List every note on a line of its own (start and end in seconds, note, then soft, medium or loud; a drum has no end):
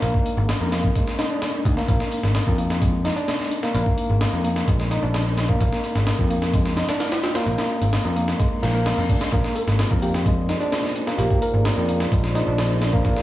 0.00 0.10 A#1 medium
0.00 0.95 G#3 medium
0.00 0.02 A#3 loud
0.00 0.13 A#3 medium
0.00 1.30 D4 loud
0.00 1.18 D#4 medium
0.00 0.60 A#4 medium
0.00 closed hi-hat medium
0.14 kick medium
0.26 closed hi-hat medium
0.37 0.53 G#1 medium
0.49 snare loud
0.49 closed hi-hat medium
0.60 0.89 F2 medium
0.60 0.67 A#4 medium
0.72 0.82 A#3 medium
0.72 snare loud
0.72 closed hi-hat medium
0.84 kick medium
0.95 1.02 G#3 medium
0.95 kick loud
0.95 closed hi-hat medium
1.07 snare soft
1.18 1.29 D#4 medium
1.18 snare loud
1.18 closed hi-hat medium
1.30 1.41 D4 loud
1.42 snare loud
1.42 closed hi-hat medium
1.65 1.81 D2 loud
1.65 kick medium
1.65 closed hi-hat medium
1.77 1.87 A#3 medium
1.77 snare soft
1.88 1.96 A#1 medium
1.88 1.99 A#3 loud
1.88 kick loud
1.88 closed hi-hat medium
2.00 snare soft
2.12 open hi-hat medium
2.23 2.39 G#1 medium
2.23 snare soft
2.35 snare loud
2.35 closed hi-hat medium
2.47 3.10 F2 medium
2.47 2.53 A#4 medium
2.47 kick medium
2.58 2.69 A#3 medium
2.58 closed hi-hat medium
2.70 snare medium
2.81 2.88 G#3 medium
2.81 kick loud
2.81 closed hi-hat medium
3.04 3.15 D#4 loud
3.04 snare soft
3.04 closed hi-hat medium
3.16 3.27 D4 loud
3.16 closed hi-hat soft
3.28 snare loud
3.28 closed hi-hat medium
3.40 snare soft
3.51 closed hi-hat medium
3.63 3.73 A#3 medium
3.63 snare medium
3.74 3.82 A#1 loud
3.74 3.85 A#3 medium
3.74 closed hi-hat medium
3.86 kick medium
3.98 closed hi-hat medium
4.10 4.25 G#1 medium
4.21 snare loud
4.21 closed hi-hat medium
4.33 4.61 F2 medium
4.33 4.39 A#4 medium
4.44 4.55 A#3 medium
4.44 closed hi-hat medium
4.56 snare medium
4.68 4.96 A#1 medium
4.68 4.74 G#3 medium
4.68 kick loud
4.68 closed hi-hat medium
4.80 snare soft
4.91 5.01 D#4 loud
4.91 snare soft
4.91 closed hi-hat medium
5.02 5.54 A#1 medium
5.02 5.13 D4 loud
5.14 snare loud
5.14 closed hi-hat medium
5.37 snare loud
5.37 closed hi-hat medium
5.49 5.59 A#3 loud
5.49 kick medium
5.60 5.68 A#1 medium
5.60 5.71 A#3 loud
5.60 kick loud
5.60 closed hi-hat medium
5.72 snare soft
5.84 open hi-hat medium
5.95 6.11 G#1 loud
5.95 snare soft
6.07 snare loud
6.07 closed hi-hat medium
6.19 6.82 F2 medium
6.19 6.25 A#4 medium
6.19 kick medium
6.30 6.41 A#3 medium
6.30 closed hi-hat medium
6.42 snare medium
6.53 6.60 G#3 medium
6.53 kick loud
6.53 closed hi-hat medium
6.65 snare soft
6.77 6.87 D#4 loud
6.77 snare loud
6.77 closed hi-hat medium
6.88 6.99 D4 loud
6.88 snare loud
6.88 closed hi-hat medium
7.00 snare loud
7.00 closed hi-hat medium
7.12 snare loud
7.12 closed hi-hat medium
7.23 snare loud
7.23 closed hi-hat medium
7.35 7.45 A#3 loud
7.35 snare loud
7.35 closed hi-hat medium
7.47 7.54 A#1 medium
7.47 7.57 A#3 loud
7.47 closed hi-hat medium
7.58 snare loud
7.58 closed hi-hat medium
7.82 7.97 G#1 medium
7.82 closed hi-hat medium
7.93 snare loud
7.93 closed hi-hat medium
8.04 8.33 F2 medium
8.04 8.11 A#4 medium
8.16 8.27 A#3 medium
8.16 closed hi-hat medium
8.28 snare medium
8.39 8.46 G#3 medium
8.39 kick loud
8.39 closed hi-hat medium
8.39 reverse cymbal medium
8.62 8.91 A#1 medium
8.62 8.73 A#3 medium
8.62 snare soft
8.62 closed hi-hat medium
8.74 8.81 A#3 loud
8.86 snare loud
8.86 closed hi-hat medium
8.97 9.09 F2 medium
9.09 9.17 D2 medium
9.09 9.20 D4 medium
9.09 kick medium
9.09 closed hi-hat medium
9.21 9.31 G#3 medium
9.21 snare loud
9.21 closed hi-hat medium
9.32 9.40 A#1 medium
9.32 9.43 A#3 medium
9.32 13.22 A#3 medium
9.32 13.22 F4 medium
9.32 13.22 G#4 medium
9.32 13.22 C5 medium
9.32 13.22 D5 medium
9.32 kick loud
9.32 closed hi-hat medium
9.44 snare soft
9.56 9.73 A#4 medium
9.56 open hi-hat medium
9.67 9.83 G#1 medium
9.67 snare soft
9.79 snare loud
9.79 closed hi-hat medium
9.91 10.54 F2 medium
9.91 9.97 A#4 medium
9.91 kick medium
10.02 10.13 A#3 medium
10.02 10.10 G4 medium
10.02 closed hi-hat medium
10.14 10.21 G4 medium
10.14 snare medium
10.26 10.32 G#3 medium
10.26 kick loud
10.26 closed hi-hat medium
10.49 10.59 D#4 loud
10.49 snare soft
10.49 closed hi-hat medium
10.61 10.72 D4 loud
10.61 closed hi-hat soft
10.72 snare loud
10.72 closed hi-hat medium
10.84 snare soft
10.96 closed hi-hat medium
11.07 11.17 A#3 loud
11.07 snare medium
11.18 11.26 A#1 medium
11.18 11.29 A#3 loud
11.18 11.26 G4 medium
11.18 closed hi-hat medium
11.30 11.38 G4 medium
11.30 kick medium
11.42 11.77 A#4 medium
11.42 closed hi-hat medium
11.54 11.69 G#1 loud
11.65 snare loud
11.65 closed hi-hat medium
11.77 12.05 F2 medium
11.77 11.83 A#4 medium
11.88 11.99 A#3 medium
11.88 closed hi-hat medium
12.00 snare medium
12.12 12.40 A#1 medium
12.12 12.18 G#3 medium
12.12 kick loud
12.12 closed hi-hat medium
12.24 snare soft
12.35 12.45 D#4 loud
12.35 snare soft
12.35 closed hi-hat medium
12.47 12.98 A#1 medium
12.47 12.58 D4 loud
12.58 snare loud
12.58 closed hi-hat medium
12.82 snare loud
12.82 closed hi-hat medium
12.93 13.03 A#3 loud
12.93 kick medium
13.05 13.12 A#1 loud
13.05 13.15 A#3 loud
13.05 kick loud
13.05 closed hi-hat medium
13.16 snare soft